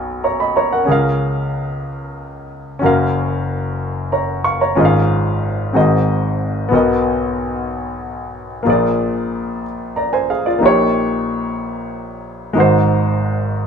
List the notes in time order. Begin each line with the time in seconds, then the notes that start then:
Already playing: B1 B2 B3 F#4 A#4 D#5
0.24 C#5 A#5
0.40 D#5 B5
0.56 C#5 A#5
0.73 A#4 F#5
0.85 C#2 C#3 C#4 G#4
0.89 A#4 F5
2.79 F#1 F#2 C#4 F#4
2.84 A#4 F5
4.12 C#5 A#5
4.44 F5 C#6
4.61 C#5 A#5
4.75 G#1 G#2 C#4 F4 G#4 D#5
4.85 F5
5.73 G#1 G#2 C4 F#4 G#4 D#5
6.69 B1 B2 B3 F#4
6.73 A#4 D#5
8.63 A#1 A#2 A#3 F4
8.68 G#4 D5
9.96 D5 A#5
10.13 C5 G#5
10.30 G#4 F5
10.46 F4 D5
10.59 A#1 A#2 A#3 D#4
10.63 G4 C#5
12.53 G#1 G#2 G#3 D#4
12.58 F#4 C5